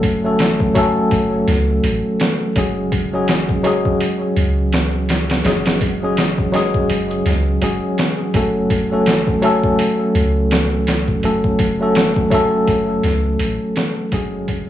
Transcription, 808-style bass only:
0, 0, Header, 1, 2, 480
1, 0, Start_track
1, 0, Key_signature, 3, "minor"
1, 0, Tempo, 722892
1, 1699, Time_signature, 4, 2, 24, 8
1, 9759, End_track
2, 0, Start_track
2, 0, Title_t, "808-style bass"
2, 0, Program_c, 0, 38
2, 0, Note_on_c, 0, 30, 88
2, 721, Note_off_c, 0, 30, 0
2, 740, Note_on_c, 0, 30, 94
2, 955, Note_off_c, 0, 30, 0
2, 980, Note_on_c, 0, 37, 87
2, 1195, Note_off_c, 0, 37, 0
2, 1220, Note_on_c, 0, 33, 103
2, 1342, Note_off_c, 0, 33, 0
2, 1699, Note_on_c, 0, 30, 96
2, 2640, Note_off_c, 0, 30, 0
2, 2899, Note_on_c, 0, 37, 91
2, 3600, Note_off_c, 0, 37, 0
2, 3619, Note_on_c, 0, 30, 95
2, 4560, Note_off_c, 0, 30, 0
2, 4578, Note_on_c, 0, 30, 94
2, 4794, Note_off_c, 0, 30, 0
2, 4819, Note_on_c, 0, 37, 92
2, 5035, Note_off_c, 0, 37, 0
2, 5059, Note_on_c, 0, 30, 102
2, 5182, Note_off_c, 0, 30, 0
2, 5539, Note_on_c, 0, 30, 97
2, 6480, Note_off_c, 0, 30, 0
2, 6740, Note_on_c, 0, 37, 89
2, 7440, Note_off_c, 0, 37, 0
2, 7460, Note_on_c, 0, 30, 99
2, 8400, Note_off_c, 0, 30, 0
2, 8418, Note_on_c, 0, 30, 94
2, 8634, Note_off_c, 0, 30, 0
2, 8657, Note_on_c, 0, 37, 90
2, 8874, Note_off_c, 0, 37, 0
2, 8898, Note_on_c, 0, 33, 100
2, 9021, Note_off_c, 0, 33, 0
2, 9377, Note_on_c, 0, 30, 95
2, 9759, Note_off_c, 0, 30, 0
2, 9759, End_track
0, 0, End_of_file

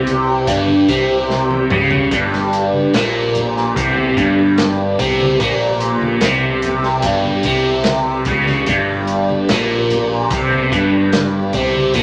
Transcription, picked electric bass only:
0, 0, Header, 1, 2, 480
1, 0, Start_track
1, 0, Tempo, 818554
1, 1245, Time_signature, 4, 2, 24, 8
1, 7054, End_track
2, 0, Start_track
2, 0, Title_t, "Picked electric bass"
2, 0, Program_c, 0, 34
2, 0, Note_on_c, 0, 36, 88
2, 264, Note_off_c, 0, 36, 0
2, 277, Note_on_c, 0, 31, 89
2, 504, Note_off_c, 0, 31, 0
2, 517, Note_on_c, 0, 36, 84
2, 978, Note_off_c, 0, 36, 0
2, 1006, Note_on_c, 0, 37, 85
2, 1229, Note_off_c, 0, 37, 0
2, 1240, Note_on_c, 0, 31, 85
2, 1700, Note_off_c, 0, 31, 0
2, 1725, Note_on_c, 0, 34, 86
2, 2182, Note_off_c, 0, 34, 0
2, 2205, Note_on_c, 0, 36, 88
2, 2429, Note_off_c, 0, 36, 0
2, 2444, Note_on_c, 0, 31, 85
2, 2902, Note_off_c, 0, 31, 0
2, 2927, Note_on_c, 0, 36, 93
2, 3151, Note_off_c, 0, 36, 0
2, 3167, Note_on_c, 0, 34, 88
2, 3624, Note_off_c, 0, 34, 0
2, 3646, Note_on_c, 0, 36, 96
2, 4103, Note_off_c, 0, 36, 0
2, 4124, Note_on_c, 0, 31, 89
2, 4349, Note_off_c, 0, 31, 0
2, 4363, Note_on_c, 0, 36, 88
2, 4822, Note_off_c, 0, 36, 0
2, 4841, Note_on_c, 0, 37, 93
2, 5068, Note_off_c, 0, 37, 0
2, 5080, Note_on_c, 0, 31, 99
2, 5540, Note_off_c, 0, 31, 0
2, 5570, Note_on_c, 0, 34, 91
2, 6025, Note_off_c, 0, 34, 0
2, 6043, Note_on_c, 0, 36, 88
2, 6268, Note_off_c, 0, 36, 0
2, 6282, Note_on_c, 0, 31, 90
2, 6741, Note_off_c, 0, 31, 0
2, 6763, Note_on_c, 0, 36, 97
2, 6988, Note_off_c, 0, 36, 0
2, 7005, Note_on_c, 0, 34, 91
2, 7054, Note_off_c, 0, 34, 0
2, 7054, End_track
0, 0, End_of_file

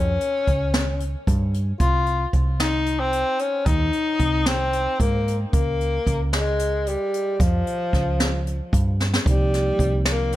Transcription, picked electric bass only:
0, 0, Header, 1, 2, 480
1, 0, Start_track
1, 0, Tempo, 531915
1, 1633, Time_signature, 7, 3, 24, 8
1, 9349, End_track
2, 0, Start_track
2, 0, Title_t, "Picked electric bass"
2, 0, Program_c, 0, 34
2, 0, Note_on_c, 0, 41, 74
2, 149, Note_off_c, 0, 41, 0
2, 429, Note_on_c, 0, 37, 75
2, 1030, Note_off_c, 0, 37, 0
2, 1150, Note_on_c, 0, 43, 86
2, 1551, Note_off_c, 0, 43, 0
2, 1625, Note_on_c, 0, 36, 79
2, 2028, Note_off_c, 0, 36, 0
2, 2107, Note_on_c, 0, 36, 66
2, 2909, Note_off_c, 0, 36, 0
2, 3302, Note_on_c, 0, 39, 72
2, 3506, Note_off_c, 0, 39, 0
2, 3783, Note_on_c, 0, 36, 71
2, 4386, Note_off_c, 0, 36, 0
2, 4509, Note_on_c, 0, 44, 78
2, 4911, Note_off_c, 0, 44, 0
2, 4993, Note_on_c, 0, 37, 66
2, 5393, Note_off_c, 0, 37, 0
2, 5474, Note_on_c, 0, 37, 74
2, 6273, Note_off_c, 0, 37, 0
2, 6675, Note_on_c, 0, 41, 73
2, 6874, Note_off_c, 0, 41, 0
2, 7158, Note_on_c, 0, 37, 76
2, 7756, Note_off_c, 0, 37, 0
2, 7877, Note_on_c, 0, 43, 90
2, 8276, Note_off_c, 0, 43, 0
2, 8354, Note_on_c, 0, 36, 79
2, 8754, Note_off_c, 0, 36, 0
2, 8832, Note_on_c, 0, 36, 71
2, 9349, Note_off_c, 0, 36, 0
2, 9349, End_track
0, 0, End_of_file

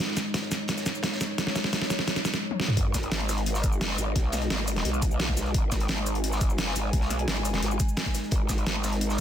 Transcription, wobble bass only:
0, 0, Header, 1, 2, 480
1, 0, Start_track
1, 0, Time_signature, 4, 2, 24, 8
1, 0, Key_signature, 5, "minor"
1, 0, Tempo, 346821
1, 12741, End_track
2, 0, Start_track
2, 0, Title_t, "Wobble bass"
2, 0, Program_c, 0, 39
2, 3833, Note_on_c, 0, 32, 99
2, 4294, Note_off_c, 0, 32, 0
2, 4313, Note_on_c, 0, 32, 97
2, 5143, Note_off_c, 0, 32, 0
2, 5143, Note_on_c, 0, 31, 97
2, 5494, Note_off_c, 0, 31, 0
2, 5513, Note_on_c, 0, 32, 96
2, 5734, Note_off_c, 0, 32, 0
2, 5753, Note_on_c, 0, 35, 101
2, 6214, Note_off_c, 0, 35, 0
2, 6233, Note_on_c, 0, 32, 94
2, 6694, Note_off_c, 0, 32, 0
2, 6713, Note_on_c, 0, 35, 95
2, 7174, Note_off_c, 0, 35, 0
2, 7193, Note_on_c, 0, 35, 97
2, 7654, Note_off_c, 0, 35, 0
2, 7673, Note_on_c, 0, 32, 102
2, 8134, Note_off_c, 0, 32, 0
2, 8153, Note_on_c, 0, 32, 98
2, 8983, Note_off_c, 0, 32, 0
2, 8983, Note_on_c, 0, 31, 98
2, 9334, Note_off_c, 0, 31, 0
2, 9353, Note_on_c, 0, 32, 99
2, 9574, Note_off_c, 0, 32, 0
2, 9593, Note_on_c, 0, 35, 99
2, 10054, Note_off_c, 0, 35, 0
2, 10073, Note_on_c, 0, 32, 94
2, 10534, Note_off_c, 0, 32, 0
2, 10553, Note_on_c, 0, 32, 100
2, 10774, Note_off_c, 0, 32, 0
2, 11513, Note_on_c, 0, 32, 97
2, 11974, Note_off_c, 0, 32, 0
2, 11993, Note_on_c, 0, 32, 98
2, 12741, Note_off_c, 0, 32, 0
2, 12741, End_track
0, 0, End_of_file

